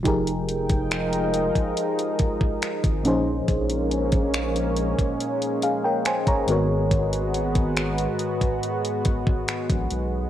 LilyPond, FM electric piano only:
\new Staff \with { instrumentName = "FM electric piano" } { \time 4/4 \key aes \major \tempo 4 = 70 << { r1 | r2 r8 <aes' f''>16 <bes' g''>16 <c'' aes''>16 <des'' bes''>8 r16 | r1 | } \\ { <f ees' g' aes' bes'>2.~ <f ees' g' aes' bes'>8 <bes, f des' ees' aes' c''>8~ | <bes, f des' ees' aes' c''>2.~ <bes, f des' ees' aes' c''>8 <aes, ees ces' ges' bes' des''>8~ | <aes, ees ces' ges' bes' des''>2.~ <aes, ees ces' ges' bes' des''>8 r8 | } >> }